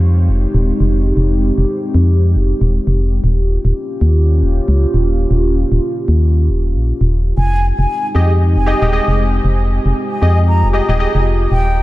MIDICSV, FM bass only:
0, 0, Header, 1, 2, 480
1, 0, Start_track
1, 0, Key_signature, -4, "minor"
1, 0, Tempo, 517241
1, 1084, Time_signature, 4, 2, 24, 8
1, 10976, End_track
2, 0, Start_track
2, 0, Title_t, "FM bass"
2, 0, Program_c, 0, 39
2, 0, Note_on_c, 0, 41, 92
2, 265, Note_on_c, 0, 29, 98
2, 279, Note_off_c, 0, 41, 0
2, 430, Note_off_c, 0, 29, 0
2, 505, Note_on_c, 0, 27, 95
2, 670, Note_off_c, 0, 27, 0
2, 745, Note_on_c, 0, 29, 100
2, 1042, Note_off_c, 0, 29, 0
2, 1084, Note_on_c, 0, 29, 99
2, 1405, Note_off_c, 0, 29, 0
2, 1465, Note_on_c, 0, 29, 96
2, 1538, Note_off_c, 0, 29, 0
2, 1804, Note_on_c, 0, 41, 95
2, 2185, Note_on_c, 0, 29, 101
2, 2199, Note_off_c, 0, 41, 0
2, 2350, Note_off_c, 0, 29, 0
2, 2425, Note_on_c, 0, 27, 96
2, 2590, Note_off_c, 0, 27, 0
2, 2665, Note_on_c, 0, 29, 98
2, 2962, Note_off_c, 0, 29, 0
2, 3004, Note_on_c, 0, 27, 99
2, 3325, Note_off_c, 0, 27, 0
2, 3385, Note_on_c, 0, 27, 95
2, 3458, Note_off_c, 0, 27, 0
2, 3724, Note_on_c, 0, 39, 94
2, 4105, Note_on_c, 0, 27, 99
2, 4118, Note_off_c, 0, 39, 0
2, 4270, Note_off_c, 0, 27, 0
2, 4345, Note_on_c, 0, 37, 94
2, 4510, Note_off_c, 0, 37, 0
2, 4585, Note_on_c, 0, 27, 98
2, 4882, Note_off_c, 0, 27, 0
2, 4924, Note_on_c, 0, 27, 102
2, 5245, Note_off_c, 0, 27, 0
2, 5305, Note_on_c, 0, 27, 94
2, 5378, Note_off_c, 0, 27, 0
2, 5644, Note_on_c, 0, 39, 91
2, 6025, Note_on_c, 0, 27, 81
2, 6039, Note_off_c, 0, 39, 0
2, 6265, Note_on_c, 0, 34, 87
2, 6279, Note_off_c, 0, 27, 0
2, 6430, Note_off_c, 0, 34, 0
2, 6505, Note_on_c, 0, 27, 83
2, 6802, Note_off_c, 0, 27, 0
2, 6844, Note_on_c, 0, 29, 100
2, 7165, Note_off_c, 0, 29, 0
2, 7225, Note_on_c, 0, 29, 94
2, 7298, Note_off_c, 0, 29, 0
2, 7564, Note_on_c, 0, 41, 98
2, 7945, Note_on_c, 0, 29, 98
2, 7959, Note_off_c, 0, 41, 0
2, 8110, Note_off_c, 0, 29, 0
2, 8186, Note_on_c, 0, 27, 94
2, 8351, Note_off_c, 0, 27, 0
2, 8425, Note_on_c, 0, 29, 97
2, 8722, Note_off_c, 0, 29, 0
2, 8764, Note_on_c, 0, 29, 101
2, 9085, Note_off_c, 0, 29, 0
2, 9145, Note_on_c, 0, 29, 94
2, 9218, Note_off_c, 0, 29, 0
2, 9484, Note_on_c, 0, 41, 95
2, 9865, Note_on_c, 0, 29, 97
2, 9879, Note_off_c, 0, 41, 0
2, 10030, Note_off_c, 0, 29, 0
2, 10105, Note_on_c, 0, 27, 96
2, 10270, Note_off_c, 0, 27, 0
2, 10345, Note_on_c, 0, 29, 101
2, 10642, Note_off_c, 0, 29, 0
2, 10685, Note_on_c, 0, 27, 100
2, 10976, Note_off_c, 0, 27, 0
2, 10976, End_track
0, 0, End_of_file